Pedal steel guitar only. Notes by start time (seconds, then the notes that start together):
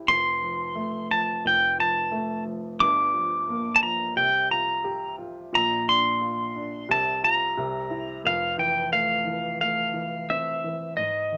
0.08 C6
1.11 A5
1.47 G5
1.80 A5
2.80 D6
3.76 A5
3.83 A#5
4.17 G5
4.51 A#5
5.55 A#5
5.89 C6
6.91 A5
7.24 A#5
8.27 F5
8.59 G5
8.93 F5
9.61 F5
10.30 E5
10.97 D#5